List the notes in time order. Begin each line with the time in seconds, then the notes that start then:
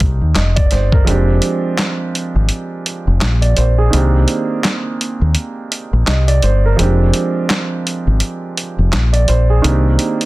Already playing: D#3 A#3 C4 D4 G4 G#4
0.00 C2, kick, closed hi-hat
0.21 D#2
0.35 F1 D#5, snare, clap, closed hi-hat
0.56 D5, kick, closed hi-hat
0.71 G1 C5, snare, closed hi-hat
0.92 A#4, kick
1.05 F1 F3 G#3 C4, closed hi-hat
1.09 D4 G4
1.42 closed hi-hat
1.79 snare, clap, closed hi-hat
2.15 closed hi-hat
2.36 G#1
2.49 closed hi-hat
2.86 closed hi-hat
3.07 F1
3.21 A#1, snare, clap, closed hi-hat
3.42 D5, closed hi-hat
3.57 A#1 C5, closed hi-hat
3.78 G#4
3.90 C2 D#3 A#3 C4, closed hi-hat
3.95 D4 G4
4.28 closed hi-hat
4.64 snare, clap, closed hi-hat
5.01 closed hi-hat
5.21 D#2
5.35 closed hi-hat
5.72 closed hi-hat
5.93 A#1
6.07 C2 D#5, snare, clap, closed hi-hat
6.28 D5, closed hi-hat
6.42 G1 C5, closed hi-hat
6.66 A#4
6.76 F1 F3 G#3 C4, closed hi-hat
6.81 D4 G4
7.14 closed hi-hat
7.50 snare, clap, closed hi-hat
7.87 closed hi-hat
8.07 G#1
8.20 closed hi-hat
8.57 closed hi-hat
8.78 F1
8.93 A#1, snare, clap, closed hi-hat
9.13 D5, closed hi-hat
9.28 A#1 C5, closed hi-hat
9.50 G#4
9.62 C2 D#3 A#3 C4, closed hi-hat
9.67 D4 G4
9.99 closed hi-hat
10.21 closed hi-hat